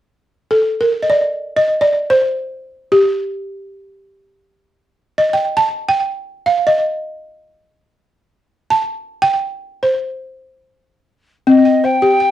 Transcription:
0, 0, Header, 1, 3, 480
1, 0, Start_track
1, 0, Tempo, 500000
1, 11818, End_track
2, 0, Start_track
2, 0, Title_t, "Flute"
2, 0, Program_c, 0, 73
2, 11026, Note_on_c, 0, 75, 82
2, 11376, Note_on_c, 0, 79, 86
2, 11391, Note_off_c, 0, 75, 0
2, 11818, Note_off_c, 0, 79, 0
2, 11818, End_track
3, 0, Start_track
3, 0, Title_t, "Balafon"
3, 0, Program_c, 1, 12
3, 487, Note_on_c, 1, 69, 69
3, 757, Note_off_c, 1, 69, 0
3, 774, Note_on_c, 1, 70, 69
3, 984, Note_on_c, 1, 75, 56
3, 999, Note_off_c, 1, 70, 0
3, 1052, Note_on_c, 1, 74, 74
3, 1059, Note_off_c, 1, 75, 0
3, 1475, Note_off_c, 1, 74, 0
3, 1502, Note_on_c, 1, 75, 83
3, 1730, Note_off_c, 1, 75, 0
3, 1738, Note_on_c, 1, 74, 75
3, 2005, Note_off_c, 1, 74, 0
3, 2017, Note_on_c, 1, 72, 85
3, 2767, Note_off_c, 1, 72, 0
3, 2802, Note_on_c, 1, 67, 71
3, 3985, Note_off_c, 1, 67, 0
3, 4974, Note_on_c, 1, 75, 73
3, 5120, Note_on_c, 1, 79, 75
3, 5129, Note_off_c, 1, 75, 0
3, 5345, Note_on_c, 1, 81, 88
3, 5359, Note_off_c, 1, 79, 0
3, 5637, Note_off_c, 1, 81, 0
3, 5650, Note_on_c, 1, 79, 88
3, 6171, Note_off_c, 1, 79, 0
3, 6202, Note_on_c, 1, 77, 76
3, 6395, Note_off_c, 1, 77, 0
3, 6401, Note_on_c, 1, 75, 68
3, 7312, Note_off_c, 1, 75, 0
3, 8356, Note_on_c, 1, 81, 82
3, 8851, Note_on_c, 1, 79, 83
3, 8869, Note_off_c, 1, 81, 0
3, 9434, Note_on_c, 1, 72, 63
3, 9444, Note_off_c, 1, 79, 0
3, 10316, Note_off_c, 1, 72, 0
3, 11011, Note_on_c, 1, 60, 78
3, 11187, Note_on_c, 1, 79, 57
3, 11354, Note_off_c, 1, 60, 0
3, 11366, Note_on_c, 1, 72, 57
3, 11541, Note_on_c, 1, 67, 76
3, 11699, Note_off_c, 1, 79, 0
3, 11714, Note_on_c, 1, 79, 56
3, 11818, Note_off_c, 1, 67, 0
3, 11818, Note_off_c, 1, 72, 0
3, 11818, Note_off_c, 1, 79, 0
3, 11818, End_track
0, 0, End_of_file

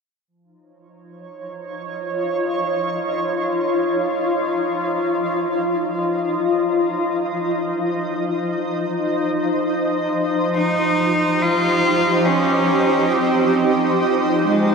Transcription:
0, 0, Header, 1, 3, 480
1, 0, Start_track
1, 0, Tempo, 500000
1, 14158, End_track
2, 0, Start_track
2, 0, Title_t, "Ambient pad"
2, 0, Program_c, 0, 92
2, 268, Note_on_c, 0, 53, 66
2, 416, Note_on_c, 0, 63, 71
2, 584, Note_on_c, 0, 73, 80
2, 808, Note_on_c, 0, 65, 69
2, 1241, Note_on_c, 0, 75, 85
2, 6263, Note_on_c, 0, 72, 76
2, 6525, Note_off_c, 0, 73, 0
2, 10247, Note_on_c, 0, 67, 89
2, 11195, Note_off_c, 0, 65, 0
2, 14158, Note_off_c, 0, 53, 0
2, 14158, Note_off_c, 0, 63, 0
2, 14158, Note_off_c, 0, 67, 0
2, 14158, Note_off_c, 0, 72, 0
2, 14158, Note_off_c, 0, 75, 0
2, 14158, End_track
3, 0, Start_track
3, 0, Title_t, "Cello"
3, 0, Program_c, 1, 42
3, 10126, Note_on_c, 1, 63, 92
3, 10963, Note_on_c, 1, 65, 99
3, 10978, Note_off_c, 1, 63, 0
3, 11762, Note_on_c, 1, 61, 89
3, 11776, Note_off_c, 1, 65, 0
3, 12607, Note_on_c, 1, 60, 79
3, 12622, Note_off_c, 1, 61, 0
3, 13431, Note_off_c, 1, 60, 0
3, 13854, Note_on_c, 1, 56, 77
3, 14158, Note_off_c, 1, 56, 0
3, 14158, End_track
0, 0, End_of_file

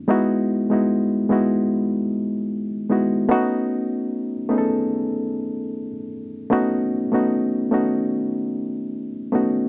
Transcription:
0, 0, Header, 1, 2, 480
1, 0, Start_track
1, 0, Tempo, 804290
1, 56, Time_signature, 4, 2, 24, 8
1, 5782, End_track
2, 0, Start_track
2, 0, Title_t, "Reed electric piano"
2, 0, Program_c, 0, 4
2, 0, Control_c, 0, 64, 127
2, 0, Note_on_c, 0, 57, 69
2, 0, Note_on_c, 0, 59, 65
2, 0, Note_on_c, 0, 61, 67
2, 0, Note_on_c, 0, 63, 62
2, 0, Note_on_c, 0, 66, 73
2, 46, Note_on_c, 0, 56, 90
2, 51, Note_off_c, 0, 59, 0
2, 51, Note_on_c, 0, 59, 85
2, 54, Note_off_c, 0, 63, 0
2, 54, Note_on_c, 0, 63, 87
2, 59, Note_on_c, 0, 64, 87
2, 63, Note_off_c, 0, 66, 0
2, 63, Note_on_c, 0, 66, 103
2, 64, Control_c, 0, 64, 0
2, 66, Note_off_c, 0, 61, 0
2, 69, Note_off_c, 0, 57, 0
2, 180, Control_c, 0, 64, 127
2, 365, Note_off_c, 0, 56, 0
2, 367, Note_off_c, 0, 59, 0
2, 369, Note_off_c, 0, 63, 0
2, 371, Note_off_c, 0, 64, 0
2, 373, Note_off_c, 0, 66, 0
2, 418, Note_on_c, 0, 56, 64
2, 425, Note_on_c, 0, 59, 55
2, 427, Note_on_c, 0, 63, 59
2, 436, Note_on_c, 0, 64, 60
2, 436, Note_on_c, 0, 66, 66
2, 725, Note_off_c, 0, 56, 0
2, 728, Note_off_c, 0, 59, 0
2, 729, Note_off_c, 0, 63, 0
2, 733, Note_off_c, 0, 64, 0
2, 734, Note_off_c, 0, 66, 0
2, 773, Note_on_c, 0, 56, 73
2, 777, Note_on_c, 0, 59, 65
2, 783, Note_on_c, 0, 63, 65
2, 786, Note_on_c, 0, 64, 70
2, 790, Note_on_c, 0, 66, 78
2, 1606, Note_off_c, 0, 56, 0
2, 1608, Note_off_c, 0, 59, 0
2, 1611, Note_off_c, 0, 63, 0
2, 1613, Note_off_c, 0, 64, 0
2, 1614, Note_off_c, 0, 66, 0
2, 1728, Note_on_c, 0, 56, 68
2, 1730, Note_on_c, 0, 59, 67
2, 1736, Note_on_c, 0, 63, 71
2, 1739, Note_on_c, 0, 64, 66
2, 1744, Note_on_c, 0, 66, 84
2, 1940, Note_off_c, 0, 56, 0
2, 1941, Note_off_c, 0, 59, 0
2, 1944, Note_off_c, 0, 63, 0
2, 1946, Note_off_c, 0, 64, 0
2, 1948, Note_off_c, 0, 66, 0
2, 1961, Note_on_c, 0, 57, 94
2, 1965, Note_on_c, 0, 59, 89
2, 1971, Note_on_c, 0, 61, 86
2, 1975, Note_on_c, 0, 63, 89
2, 1978, Note_on_c, 0, 66, 112
2, 1983, Control_c, 0, 64, 0
2, 2078, Control_c, 0, 64, 127
2, 2594, Note_off_c, 0, 57, 0
2, 2596, Note_off_c, 0, 59, 0
2, 2599, Note_off_c, 0, 61, 0
2, 2601, Note_off_c, 0, 63, 0
2, 2603, Note_off_c, 0, 66, 0
2, 2679, Note_on_c, 0, 57, 70
2, 2681, Note_on_c, 0, 59, 66
2, 2689, Note_on_c, 0, 61, 69
2, 2691, Note_on_c, 0, 63, 66
2, 2696, Note_on_c, 0, 68, 65
2, 2733, Note_on_c, 0, 69, 80
2, 2738, Note_off_c, 0, 68, 0
2, 3520, Note_off_c, 0, 57, 0
2, 3521, Note_off_c, 0, 59, 0
2, 3525, Note_off_c, 0, 61, 0
2, 3525, Note_off_c, 0, 63, 0
2, 3547, Note_off_c, 0, 69, 0
2, 3878, Note_on_c, 0, 57, 88
2, 3884, Note_on_c, 0, 59, 85
2, 3888, Note_on_c, 0, 61, 86
2, 3893, Note_on_c, 0, 63, 87
2, 3895, Note_on_c, 0, 66, 111
2, 4202, Note_off_c, 0, 57, 0
2, 4205, Note_off_c, 0, 59, 0
2, 4207, Note_off_c, 0, 61, 0
2, 4209, Note_off_c, 0, 63, 0
2, 4210, Note_off_c, 0, 66, 0
2, 4248, Note_on_c, 0, 57, 66
2, 4253, Note_on_c, 0, 59, 61
2, 4257, Note_on_c, 0, 61, 56
2, 4262, Note_on_c, 0, 63, 64
2, 4264, Note_on_c, 0, 66, 73
2, 4561, Note_off_c, 0, 57, 0
2, 4563, Note_off_c, 0, 59, 0
2, 4565, Note_off_c, 0, 61, 0
2, 4568, Note_off_c, 0, 63, 0
2, 4569, Note_off_c, 0, 66, 0
2, 4603, Note_on_c, 0, 57, 70
2, 4604, Note_on_c, 0, 59, 62
2, 4607, Note_on_c, 0, 61, 66
2, 4614, Note_on_c, 0, 63, 62
2, 4619, Note_on_c, 0, 66, 77
2, 5442, Note_off_c, 0, 57, 0
2, 5442, Note_off_c, 0, 59, 0
2, 5444, Note_off_c, 0, 61, 0
2, 5447, Note_off_c, 0, 63, 0
2, 5450, Note_off_c, 0, 66, 0
2, 5564, Note_on_c, 0, 57, 72
2, 5565, Note_on_c, 0, 59, 67
2, 5572, Note_on_c, 0, 61, 65
2, 5576, Note_on_c, 0, 63, 66
2, 5582, Note_on_c, 0, 66, 78
2, 5779, Note_off_c, 0, 57, 0
2, 5780, Note_off_c, 0, 59, 0
2, 5782, Note_off_c, 0, 61, 0
2, 5782, Note_off_c, 0, 63, 0
2, 5782, Note_off_c, 0, 66, 0
2, 5782, End_track
0, 0, End_of_file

